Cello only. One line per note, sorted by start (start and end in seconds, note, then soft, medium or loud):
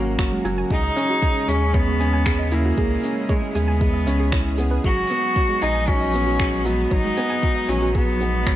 0.00 0.40 A#3 loud
0.71 1.50 D#4 loud
1.49 1.76 C#4 loud
1.75 2.54 B3 loud
2.52 3.31 A#3 loud
3.30 3.56 G#3 medium
3.55 4.58 B3 loud
4.85 5.64 F#4 loud
5.62 5.90 D#4 loud
5.88 6.59 C#4 loud
6.59 6.67 C#4 medium
6.66 6.93 B3 loud
6.91 7.70 D#4 loud
7.69 7.94 C#4 loud
7.95 8.56 B3 loud